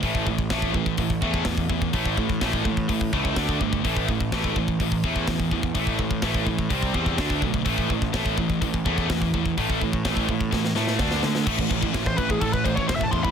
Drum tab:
CC |----------------|----------------|----------------|----------------|
HH |o---o---o---o---|o---o---o---o---|o---o---o---o---|o---o---o---o---|
SD |----o-------o---|----o-------o---|----o-------o---|----o-------o---|
BD |oooooooooooooooo|oooooooooooooooo|oooooooooooooooo|oooooooooooooooo|

CC |----------------|----------------|x-x-x-x-x-x-x-x-|
HH |o---o---o---o---|o---o-----------|----------------|
SD |----o-------o---|----o---oooooooo|----o-------o---|
BD |oooooooooooooooo|ooooooooo---o---|oooooooooooooooo|